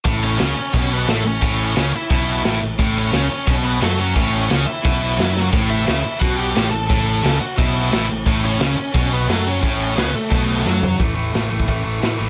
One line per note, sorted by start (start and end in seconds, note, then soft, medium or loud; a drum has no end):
0.05 0.37 A1 medium
0.05 0.39 A2 loud
0.05 kick loud
0.05 crash medium
0.22 0.71 C#4 medium
0.22 0.75 C#5 medium
0.22 crash medium
0.39 0.56 C#2 medium
0.39 0.56 C#3 loud
0.39 snare loud
0.39 crash medium
0.56 muted overdriven electric guitar stroke medium
0.56 muted distorted electric guitar stroke medium
0.56 muted picked electric bass stroke soft
0.56 crash medium
0.74 1.06 B1 medium
0.74 1.08 B2 loud
0.74 0.90 C#4 medium
0.74 0.93 C#5 loud
0.74 kick loud
0.74 crash medium
0.90 1.08 B3 medium
0.90 1.09 B4 medium
0.90 crash medium
1.07 1.24 A1 loud
1.07 1.24 A2 loud
1.07 1.24 A3 medium
1.07 1.26 A4 medium
1.07 snare loud
1.07 crash medium
1.25 1.41 A1 medium
1.25 1.39 A2 medium
1.25 1.74 C#4 medium
1.25 1.77 C#5 loud
1.25 crash medium
1.41 1.74 A1 medium
1.41 1.76 A2 loud
1.41 kick loud
1.41 crash medium
1.59 crash medium
1.76 1.93 C#2 loud
1.76 1.93 C#3 loud
1.76 1.93 C#4 medium
1.76 1.95 C#5 medium
1.76 snare loud
1.76 crash medium
1.93 2.59 E4 medium
1.93 2.63 E5 medium
1.93 muted distorted electric guitar stroke medium
1.93 muted overdriven electric guitar stroke medium
1.93 muted picked electric bass stroke soft
1.93 crash medium
2.10 2.42 B1 loud
2.10 2.44 B2 loud
2.10 kick loud
2.10 crash medium
2.27 crash medium
2.44 2.61 A1 medium
2.44 2.61 A2 loud
2.44 snare loud
2.44 crash medium
2.61 2.78 A1 medium
2.61 2.76 A2 medium
2.61 crash medium
2.78 3.11 A1 loud
2.78 3.12 A2 loud
2.78 kick loud
2.78 crash medium
2.96 3.44 C#4 medium
2.96 3.45 C#5 loud
2.96 crash medium
3.12 3.29 C#2 loud
3.12 3.30 C#3 loud
3.12 snare loud
3.12 crash medium
3.30 muted overdriven electric guitar stroke medium
3.30 muted picked electric bass stroke soft
3.30 muted distorted electric guitar stroke medium
3.30 crash medium
3.47 3.79 B1 loud
3.47 3.80 B2 loud
3.47 3.53 C#4 medium
3.47 3.53 C#5 medium
3.47 kick loud
3.47 crash medium
3.64 3.81 B3 medium
3.64 3.82 B4 medium
3.64 crash medium
3.81 4.14 F#2 loud
3.81 4.15 F#3 loud
3.81 3.98 A3 medium
3.81 4.00 A4 medium
3.81 snare loud
3.81 crash loud
3.98 4.47 C#4 medium
3.98 4.50 C#5 loud
3.98 crash medium
4.16 4.48 A1 medium
4.16 4.50 A2 loud
4.16 kick loud
4.16 crash medium
4.33 crash medium
4.50 4.66 C#2 medium
4.50 4.66 C#3 loud
4.50 4.67 C#4 medium
4.50 4.67 C#5 medium
4.50 snare loud
4.50 crash medium
4.67 5.32 E4 medium
4.67 5.32 E5 loud
4.67 muted overdriven electric guitar stroke medium
4.67 muted picked electric bass stroke soft
4.67 muted distorted electric guitar stroke medium
4.67 crash medium
4.83 5.17 B1 loud
4.83 5.18 B2 loud
4.83 kick loud
4.83 crash medium
5.02 crash medium
5.18 5.51 F#2 medium
5.18 5.51 F#3 loud
5.18 snare loud
5.18 crash medium
5.37 snare medium
5.52 5.85 A1 medium
5.52 5.85 A2 loud
5.52 kick loud
5.52 crash loud
5.52 crash medium
5.70 6.18 E4 medium
5.70 6.18 E5 medium
5.70 crash medium
5.86 6.03 C#2 medium
5.86 6.03 C#3 loud
5.86 snare loud
5.86 crash medium
6.04 muted distorted electric guitar stroke medium
6.04 muted overdriven electric guitar stroke medium
6.04 muted picked electric bass stroke soft
6.04 crash medium
6.20 6.53 B1 loud
6.20 6.54 B2 loud
6.20 6.38 F#4 medium
6.20 6.36 F#5 medium
6.20 kick loud
6.20 crash medium
6.37 6.71 G4 medium
6.37 6.70 G5 loud
6.37 crash medium
6.55 6.72 A1 medium
6.55 6.70 A2 loud
6.55 snare loud
6.55 crash medium
6.71 6.89 A1 medium
6.71 6.86 A2 medium
6.71 6.88 A4 medium
6.71 6.86 A5 loud
6.71 crash medium
6.87 7.21 A1 loud
6.87 7.22 A2 loud
6.87 7.37 A4 medium
6.87 7.41 A5 loud
6.87 kick loud
6.87 crash medium
7.07 crash medium
7.23 7.40 C#2 medium
7.23 7.40 C#3 loud
7.23 snare loud
7.23 crash medium
7.39 7.57 F#4 medium
7.39 7.57 F#5 medium
7.39 muted distorted electric guitar stroke medium
7.39 muted overdriven electric guitar stroke medium
7.39 muted picked electric bass stroke soft
7.39 crash medium
7.58 7.90 B1 loud
7.58 7.91 B2 loud
7.58 8.06 E4 medium
7.58 8.05 E5 medium
7.58 kick loud
7.58 crash medium
7.76 crash medium
7.92 8.08 A1 medium
7.92 8.08 A2 loud
7.92 snare loud
7.92 crash medium
8.09 8.25 A1 medium
8.09 8.23 A2 medium
8.09 crash medium
8.26 8.58 A1 loud
8.26 8.60 A2 loud
8.26 kick loud
8.26 crash medium
8.43 8.92 C#4 medium
8.43 8.95 C#5 loud
8.43 crash medium
8.60 8.77 C#2 medium
8.60 8.77 C#3 loud
8.60 snare loud
8.60 crash medium
8.77 muted overdriven electric guitar stroke medium
8.77 muted distorted electric guitar stroke medium
8.77 muted picked electric bass stroke soft
8.77 crash medium
8.94 9.26 B1 loud
8.94 9.28 B2 loud
8.94 9.11 C#4 medium
8.94 9.13 C#5 loud
8.94 kick loud
8.94 crash medium
9.12 9.28 B3 medium
9.12 9.30 B4 loud
9.12 crash medium
9.28 9.60 F#2 medium
9.28 9.62 F#3 loud
9.28 9.45 A3 medium
9.28 9.47 A4 medium
9.28 snare loud
9.28 crash medium
9.46 9.94 C#4 medium
9.46 9.98 C#5 loud
9.46 crash medium
9.62 9.95 A1 medium
9.62 9.96 A2 loud
9.62 kick loud
9.62 crash medium
9.80 crash medium
9.96 10.13 C#2 medium
9.96 10.13 C#3 loud
9.96 10.13 B3 medium
9.96 10.15 B4 medium
9.96 snare loud
9.96 crash medium
10.13 10.79 A3 medium
10.13 10.83 A4 medium
10.13 muted overdriven electric guitar stroke medium
10.13 muted distorted electric guitar stroke medium
10.13 muted picked electric bass stroke soft
10.13 crash medium
10.30 10.63 B1 loud
10.30 10.64 B2 loud
10.30 kick loud
10.30 crash medium
10.49 crash medium
10.64 10.97 F#2 medium
10.64 10.97 F#3 loud
10.64 snare medium
10.83 floor tom loud
10.98 11.14 A1 medium
10.98 11.15 A2 medium
10.98 11.15 E3 medium
10.98 11.14 A3 loud
10.98 kick loud
10.98 open hi-hat medium
11.15 11.31 A1 medium
11.15 11.31 A2 medium
11.15 11.33 E3 medium
11.15 11.33 A3 loud
11.15 open hi-hat medium
11.32 11.48 A1 medium
11.32 11.50 A2 medium
11.32 11.50 E3 medium
11.32 11.48 A3 medium
11.32 snare loud
11.32 open hi-hat medium
11.50 11.66 A1 medium
11.50 11.66 A2 medium
11.50 11.67 E3 medium
11.50 11.67 A3 medium
11.50 open hi-hat soft
11.60 kick medium
11.67 11.83 A1 medium
11.67 11.83 A2 medium
11.67 11.84 E3 loud
11.67 11.82 A3 loud
11.67 kick medium
11.67 open hi-hat medium
11.84 12.00 A1 medium
11.84 12.00 A2 medium
11.84 12.01 E3 medium
11.84 12.01 A3 medium
11.84 open hi-hat medium
12.01 12.18 A2 medium
12.01 12.17 A2 medium
12.01 12.18 E3 medium
12.01 12.17 A3 loud
12.01 snare loud
12.01 open hi-hat medium
12.18 12.29 A1 medium
12.18 12.29 A2 medium
12.18 12.29 E3 medium
12.18 12.29 A3 medium
12.18 open hi-hat medium